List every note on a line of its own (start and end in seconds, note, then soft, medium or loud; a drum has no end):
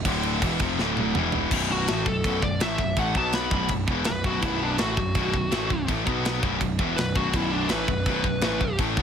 0.05 0.39 D1 loud
0.05 0.41 D2 loud
0.05 0.42 A2 loud
0.05 0.42 D3 loud
0.05 kick loud
0.05 crash medium
0.23 crash medium
0.42 0.59 E1 loud
0.42 0.60 E2 loud
0.42 0.60 B2 loud
0.42 0.60 E3 loud
0.42 kick loud
0.42 crash medium
0.59 0.77 F1 medium
0.59 0.79 F2 medium
0.59 0.79 C3 loud
0.59 0.79 F3 loud
0.59 kick loud
0.59 crash medium
0.79 1.13 D1 loud
0.79 1.15 D2 loud
0.79 1.15 A2 loud
0.79 1.16 D3 loud
0.79 snare medium
0.97 high tom medium
1.15 1.50 E1 loud
1.15 1.51 E2 medium
1.15 1.51 B2 loud
1.15 1.52 E3 medium
1.15 mid tom loud
1.32 floor tom medium
1.51 1.85 B0 medium
1.51 1.87 B1 medium
1.51 1.88 F#2 medium
1.51 1.88 B2 medium
1.51 kick loud
1.51 crash loud
1.51 crash medium
1.72 2.06 F#4 loud
1.88 2.06 A1 loud
1.88 2.06 A2 loud
1.88 2.06 E3 loud
1.88 2.07 A3 medium
1.88 snare loud
1.88 crash medium
2.06 2.23 B0 medium
2.06 2.21 B1 medium
2.06 2.22 F#2 medium
2.06 2.42 A4 medium
2.06 kick medium
2.24 2.42 B0 loud
2.24 2.41 B1 medium
2.24 2.42 F#2 loud
2.24 2.42 B2 loud
2.24 kick loud
2.24 crash medium
2.42 2.60 B0 medium
2.42 2.57 B1 medium
2.42 2.58 F#2 medium
2.42 2.61 D5 medium
2.42 kick medium
2.60 2.78 A1 loud
2.60 2.78 A2 medium
2.60 2.79 E3 loud
2.60 2.79 A3 medium
2.60 2.97 E5 medium
2.60 snare loud
2.60 crash medium
2.78 2.96 B0 medium
2.78 2.94 B1 medium
2.78 2.94 F#2 medium
2.78 kick medium
2.96 3.14 A1 medium
2.96 3.15 A2 medium
2.96 3.15 E3 medium
2.96 3.15 A3 loud
2.96 3.16 F#5 medium
2.96 kick loud
2.96 crash medium
3.15 3.50 B1 medium
3.15 3.50 B2 medium
3.15 3.51 F#3 loud
3.15 3.52 B3 loud
3.15 3.34 A5 medium
3.15 kick medium
3.33 3.70 B5 loud
3.33 snare loud
3.33 crash medium
3.50 3.69 B0 loud
3.50 3.69 B1 medium
3.50 3.69 F#2 loud
3.50 3.70 B2 loud
3.50 kick loud
3.68 3.87 B0 medium
3.68 3.85 B1 medium
3.68 3.85 F#2 medium
3.68 kick medium
3.68 crash medium
3.87 4.06 E1 loud
3.87 4.05 E2 medium
3.87 4.06 B2 medium
3.87 4.06 E3 loud
3.87 kick loud
4.04 4.24 B0 medium
4.04 4.21 B1 medium
4.04 4.21 F#2 medium
4.04 4.24 B4 loud
4.04 snare loud
4.04 crash medium
4.24 4.42 B0 medium
4.24 4.41 B1 loud
4.24 4.41 F#2 loud
4.24 4.42 B2 loud
4.24 4.41 F#4 medium
4.24 kick loud
4.41 4.77 B0 medium
4.41 4.78 B1 medium
4.41 4.78 F#2 loud
4.41 4.79 B2 loud
4.41 4.60 E4 medium
4.41 kick loud
4.41 crash medium
4.63 4.80 D4 medium
4.78 4.97 A1 loud
4.78 4.97 A2 loud
4.78 4.97 E3 loud
4.78 4.97 A3 loud
4.78 5.85 F#4 loud
4.78 snare loud
4.78 crash medium
4.97 5.15 B0 medium
4.97 5.13 B1 medium
4.97 5.13 F#2 medium
4.97 kick medium
5.15 5.33 B0 loud
5.15 5.33 B1 loud
5.15 5.34 F#2 loud
5.15 5.34 B2 loud
5.15 kick loud
5.15 crash medium
5.34 5.51 B0 medium
5.34 5.49 B1 medium
5.34 5.49 F#2 medium
5.34 kick medium
5.52 5.69 A1 medium
5.52 5.70 A2 medium
5.52 5.71 E3 medium
5.52 5.71 A3 loud
5.52 snare loud
5.52 crash medium
5.70 5.88 B0 medium
5.70 5.86 B1 medium
5.70 5.86 F#2 medium
5.70 kick medium
5.88 6.06 A1 medium
5.88 6.07 A2 medium
5.88 6.05 E3 loud
5.88 6.05 A3 loud
5.88 kick loud
5.88 crash medium
6.05 6.41 B1 loud
6.05 6.42 B2 medium
6.05 6.43 F#3 loud
6.05 6.43 B3 loud
6.05 kick loud
6.25 snare loud
6.25 crash medium
6.42 6.61 B0 medium
6.42 6.60 B1 medium
6.42 6.61 F#2 medium
6.42 6.61 B2 medium
6.42 kick loud
6.61 6.78 B0 medium
6.61 6.76 B1 medium
6.61 6.77 F#2 medium
6.61 kick medium
6.61 crash medium
6.78 6.97 E1 loud
6.78 6.97 E2 medium
6.78 6.97 B2 medium
6.78 6.98 E3 loud
6.78 kick loud
6.97 7.15 B0 medium
6.97 7.13 B1 medium
6.97 7.13 F#2 medium
6.97 7.15 B4 loud
6.97 snare loud
6.97 crash medium
7.15 7.33 B0 medium
7.15 7.32 B1 loud
7.15 7.33 F#2 medium
7.15 7.34 B2 loud
7.15 7.36 F#4 medium
7.15 kick loud
7.33 7.68 B0 medium
7.33 7.70 B1 medium
7.33 7.70 F#2 loud
7.33 7.71 B2 loud
7.33 7.51 E4 loud
7.33 kick loud
7.33 crash medium
7.51 7.70 D4 medium
7.69 7.88 A1 medium
7.69 7.88 A2 loud
7.69 7.89 E3 loud
7.69 7.89 A3 loud
7.69 8.76 B4 loud
7.69 snare loud
7.69 crash medium
7.88 8.06 B0 medium
7.88 8.04 B1 medium
7.88 8.04 F#2 medium
7.88 kick medium
8.06 8.24 B0 medium
8.06 8.22 B1 medium
8.06 8.23 F#2 loud
8.06 8.25 B2 loud
8.06 kick loud
8.06 crash medium
8.24 8.42 B0 medium
8.24 8.39 B1 medium
8.24 8.40 F#2 medium
8.24 kick medium
8.41 8.60 A1 loud
8.41 8.61 A2 loud
8.41 8.61 E3 loud
8.41 8.62 A3 loud
8.41 snare loud
8.41 crash medium
8.61 8.79 B0 medium
8.61 8.77 B1 medium
8.61 8.77 F#2 medium
8.61 kick medium
8.79 8.97 A1 loud
8.79 8.97 A2 loud
8.79 8.97 E3 loud
8.79 8.98 A3 loud
8.79 kick loud
8.79 crash medium
8.97 9.02 B1 medium
8.97 9.02 B2 medium
8.97 9.02 F#3 loud
8.97 9.02 B3 loud
8.97 kick loud